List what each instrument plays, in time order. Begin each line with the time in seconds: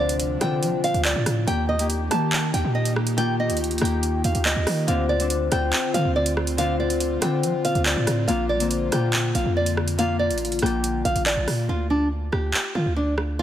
Already playing: 808-style bass D2, analog synth pad C3 F3 D4, harp D3 A#3 C4 D4 F4
0.00 nylon-string guitar D5
0.09 closed hi-hat
0.20 closed hi-hat
0.40 harp D3 C4 F4, 808-style bass D3, nylon-string guitar G5, cross-stick, closed hi-hat
0.62 808-style bass F3, closed hi-hat
0.84 nylon-string guitar F5, closed hi-hat
0.94 808-style bass D2, closed hi-hat
1.05 nylon-string guitar D5, clap, closed hi-hat
1.16 808-style bass A2
1.26 808-style bass A2, cross-stick, closed hi-hat
1.47 808-style bass D#2, harp D#3 A#3 G4, analog synth pad A#3 D#4 G4, nylon-string guitar G5, closed hi-hat
1.69 nylon-string guitar D#5
1.78 harp D#3 A#3 G4, closed hi-hat
1.90 closed hi-hat
2.10 harp D#3 A#3 G4, 808-style bass D#3, nylon-string guitar A5, cross-stick, closed hi-hat
2.33 clap
2.54 808-style bass D#2, nylon-string guitar G5, closed hi-hat
2.65 808-style bass A#2
2.75 nylon-string guitar D#5
2.85 closed hi-hat
2.96 cross-stick
3.07 closed hi-hat
3.17 harp D#3 A#3 F4, nylon-string guitar G5, closed hi-hat
3.40 nylon-string guitar D#5
3.50 808-style bass D2, closed hi-hat
3.57 closed hi-hat
3.64 closed hi-hat
3.71 closed hi-hat
3.78 808-style bass D#2, harp D#3 A#3, cross-stick, closed hi-hat
3.82 harp G4, nylon-string guitar G5, closed hi-hat
4.03 closed hi-hat
4.24 808-style bass D#2, nylon-string guitar F5, closed hi-hat
4.35 808-style bass D2, closed hi-hat
4.45 nylon-string guitar D#5, clap, closed hi-hat
4.56 808-style bass D#2
4.67 808-style bass D#3, cross-stick, open hi-hat
4.87 808-style bass D2, harp D3 C4 F4, analog synth pad D3 C4 F4, nylon-string guitar F5, closed hi-hat
5.09 nylon-string guitar D5
5.19 harp D3 C4 D4, closed hi-hat
5.30 closed hi-hat
5.51 808-style bass D2, harp D3 C4 F4, nylon-string guitar G5, cross-stick, closed hi-hat
5.73 clap
5.94 808-style bass D3, nylon-string guitar F5, closed hi-hat
6.05 808-style bass D2
6.16 nylon-string guitar D5
6.26 closed hi-hat
6.37 cross-stick
6.47 closed hi-hat
6.57 harp D3 C4 F4, nylon-string guitar F5, closed hi-hat
6.80 nylon-string guitar D5
6.90 closed hi-hat
7.00 closed hi-hat
7.21 harp D3 C4 F4, 808-style bass D3, nylon-string guitar G5, cross-stick, closed hi-hat
7.43 808-style bass F3, closed hi-hat
7.65 nylon-string guitar F5, closed hi-hat
7.75 808-style bass D2, closed hi-hat
7.86 nylon-string guitar D5, clap, closed hi-hat
7.97 808-style bass A2
8.07 808-style bass A2, cross-stick, closed hi-hat
8.27 808-style bass A#1, harp D3 A#3 F4, analog synth pad D3 A#3, nylon-string guitar F5, closed hi-hat
8.49 nylon-string guitar D5
8.59 harp D3 A#3 C4, closed hi-hat
8.71 closed hi-hat
8.91 808-style bass A#2, harp D3 A#3 F4, nylon-string guitar G5, cross-stick, closed hi-hat
9.13 clap
9.35 808-style bass A#1, nylon-string guitar F5, closed hi-hat
9.45 808-style bass F2
9.57 nylon-string guitar D5
9.66 closed hi-hat
9.77 cross-stick
9.88 closed hi-hat
9.98 harp D3 A#3 F4, nylon-string guitar F5, closed hi-hat
10.19 nylon-string guitar D5
10.31 808-style bass A1, closed hi-hat
10.38 closed hi-hat
10.45 closed hi-hat
10.52 closed hi-hat
10.59 808-style bass A#1, harp D3 A#3, nylon-string guitar G5, cross-stick, closed hi-hat
10.64 harp F4, closed hi-hat
10.84 closed hi-hat
11.05 808-style bass A#1, nylon-string guitar F5, closed hi-hat
11.16 808-style bass A1, closed hi-hat
11.26 nylon-string guitar D5, clap, closed hi-hat
11.37 808-style bass A#1
11.48 808-style bass A#2, cross-stick, open hi-hat
11.69 808-style bass D2, nylon-string guitar F4
11.90 nylon-string guitar D4
12.32 808-style bass D2, nylon-string guitar G4, cross-stick
12.54 clap
12.75 808-style bass D3, nylon-string guitar F4
12.86 808-style bass D2
12.96 nylon-string guitar D4
13.18 cross-stick
13.39 nylon-string guitar F4